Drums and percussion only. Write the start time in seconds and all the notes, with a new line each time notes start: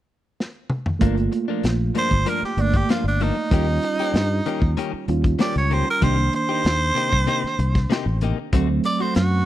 0.40 snare
0.70 mid tom
0.86 floor tom
1.01 kick, closed hi-hat
1.17 closed hi-hat
1.32 closed hi-hat
1.63 snare, closed hi-hat
1.95 closed hi-hat
2.11 kick
2.26 closed hi-hat
2.44 snare
2.58 closed hi-hat
2.74 kick, closed hi-hat
2.89 snare, closed hi-hat
3.20 closed hi-hat
3.51 kick, closed hi-hat
3.83 closed hi-hat
3.99 closed hi-hat
4.14 snare, closed hi-hat
4.46 closed hi-hat
4.62 kick
4.77 closed hi-hat
5.08 closed hi-hat
5.24 kick, closed hi-hat
5.39 snare, closed hi-hat
5.55 snare, closed hi-hat
5.71 closed hi-hat
6.02 kick, closed hi-hat
6.18 closed hi-hat
6.33 closed hi-hat
6.65 snare, closed hi-hat
6.96 closed hi-hat
7.12 kick
7.27 closed hi-hat
7.46 snare
7.59 closed hi-hat
7.75 kick, snare, closed hi-hat
7.90 snare, closed hi-hat
8.21 closed hi-hat
8.53 kick, closed hi-hat
8.84 closed hi-hat
9.00 closed hi-hat
9.15 snare, closed hi-hat